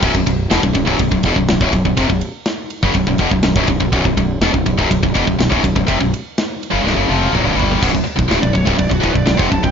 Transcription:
<<
  \new Staff \with { instrumentName = "Lead electric guitar" } { \time 4/4 \key c \lydian \tempo 4 = 123 r1 | r1 | r1 | r1 |
\key b \minor r4 r16 d''16 cis''16 e''16 d''16 fis'16 b'16 d''16 d''16 fis''16 a''16 g''16 | }
  \new Staff \with { instrumentName = "Distorted electric guitar" } { \clef bass \time 4/4 \key c \lydian <b,, fis,>16 <b,, fis,>16 <b,, fis,>8 <e, b,>16 <b,, fis,>16 <b,, fis,>16 <b,, fis,>16 <b,, fis,>16 <b,, fis,>16 <e, b,>16 <b,, fis,>16 <b,, fis,>16 <b,, fis,>16 <b,, fis,>16 <b,, fis,>16 | <eis, c>16 <b,, fis,>16 r4 r16 <fis, cis>16 <b,, fis,>16 <b,, fis,>16 <e, b,>16 <b,, fis,>16 <b,, fis,>16 <b,, fis,>16 <b,, fis,>16 <b,, fis,>16 | <b,, fis,>16 <b,, fis,>16 <b,, fis,>8 <e, b,>16 <b,, fis,>16 <b,, fis,>16 <b,, fis,>16 <b,, fis,>16 <b,, fis,>16 <e, b,>16 <b,, fis,>16 <b,, fis,>16 <b,, fis,>16 <b,, fis,>16 <b,, fis,>16 | <eis, c>16 <b,, fis,>16 r4 r16 <fis, cis>16 <c, g,>16 <fis, cis>16 <eis, c eis>8 <b,, fis,>16 <c, g,>16 <g, d g>8 |
\key b \minor <b,, fis,>16 <b,, fis,>16 r16 <b,, fis,>16 <d, a,>16 <b,, fis,>16 <b,, fis,>16 <c, g,>16 <b,, fis,>16 <b,, fis,>16 <d, a,>16 <b,, fis,>16 <b,, fis,>16 <eis, c>16 <b,, fis,>16 <b,, fis,>16 | }
  \new Staff \with { instrumentName = "Fingered electric bass" } { \clef bass \time 4/4 \key c \lydian b,,,16 b,,,16 b,,,8 e,,16 b,,,16 b,,,16 b,,,16 b,,,16 b,,,16 e,,16 b,,,16 b,,,16 b,,,16 b,,,16 b,,,16 | eis,,16 b,,,16 r4 r16 fis,,16 b,,,16 b,,,16 e,,16 b,,,16 b,,,16 b,,,16 b,,,16 b,,,16 | b,,,16 b,,,16 b,,,8 e,,16 b,,,16 b,,,16 b,,,16 b,,,16 b,,,16 e,,16 b,,,16 b,,,16 b,,,16 b,,,16 b,,,16 | eis,,16 b,,,16 r4 r16 fis,,16 c,,16 fis,,16 eis,,8 b,,,16 c,,16 g,,8 |
\key b \minor b,,,16 b,,,16 r16 b,,,16 d,,16 b,,,16 b,,,16 c,,16 b,,,16 b,,,16 d,,16 b,,,16 b,,,16 eis,,16 b,,,16 b,,,16 | }
  \new DrumStaff \with { instrumentName = "Drums" } \drummode { \time 4/4 <cymc bd>16 bd16 <bd cymr>8 <cymr sn>16 bd16 <bd cymr>16 bd16 <bd cymr>16 bd16 <bd cymr>16 bd16 <cymr sn>16 bd16 <bd cymr>16 bd16 | <bd cymr>16 bd16 cymr8 <cymr sn>8 cymr16 bd16 <bd cymr>16 bd16 <bd cymr>16 bd16 <cymr sn>16 bd16 <bd cymr>16 bd16 | <bd cymr>16 bd16 <bd cymr>8 <cymr sn>16 bd16 <bd cymr>16 bd16 <bd cymr>16 bd16 <bd cymr>16 bd16 <cymr sn>16 bd16 <bd cymr>16 bd16 | <bd cymr>16 bd16 cymr8 <cymr sn>8 cymr8 sn8 tommh16 tommh16 toml8 tomfh16 tomfh16 |
<cymc bd>16 bd16 cymc16 bd16 <cymc sn>16 bd16 <cymc bd>16 bd16 <cymc bd>16 bd16 <cymc bd>16 bd16 <cymc sn>16 bd16 <cymc bd>16 bd16 | }
>>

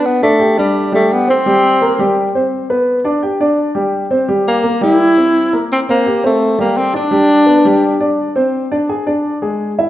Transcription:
<<
  \new Staff \with { instrumentName = "Grand piano" } { \time 4/4 \key c \major \tempo 4 = 170 <b b'>8 <d' d''>8 <g' g''>8 <d' d''>4 <g g'>4 <c' c''>8 | <g g'>4 <bes bes'>8 <g g'>4 <c' c''>4 <b b'>8~ | <b b'>8 <d' d''>8 <g' g''>8 <d' d''>4 <g g'>4 <c' c''>8 | <g g'>4 <bes bes'>8 <g g'>4 <c' c''>4 <bes bes'>8~ |
<bes bes'>8 <c' c''>8 <g' g''>8 <c' c''>4 <g g'>4 <d' d''>8 | <g g'>4 <b b'>8 <g g'>4 <d' d''>4 <c' c''>8~ | <c' c''>8 <d' d''>8 <gis' gis''>8 <d' d''>4 <gis gis'>4 <e' e''>8 | }
  \new Staff \with { instrumentName = "Tenor saxophone" } { \time 4/4 \key c \major b8 a4 g4 a8 b8 c'8~ | c'2~ c'8 r4. | r1 | r8 bes4 e'2~ e'8 |
c'8 bes4 a4 bes8 c'8 d'8~ | d'2~ d'8 r4. | r1 | }
>>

